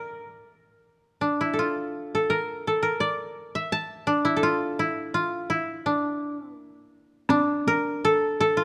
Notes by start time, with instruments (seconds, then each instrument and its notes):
Already playing: koto A#4 D5 E5
1.21 koto D4
1.41 koto E4
1.54 koto A4
1.59 koto F4
2.15 koto A4
2.30 koto A#4
2.67 koto A4
2.83 koto A#4
3.00 koto D5
3.55 koto E5
3.72 koto A5
4.07 koto D4
4.25 koto E4
4.37 koto A4
4.43 koto F4
4.79 koto E4
5.14 koto F4
5.50 koto E4
5.86 koto D4
6.56 koto A#3
7.29 koto D4, taiko rim, taiko high
7.67 koto A#4, taiko high
8.05 koto A4
8.40 koto A4
8.57 koto F4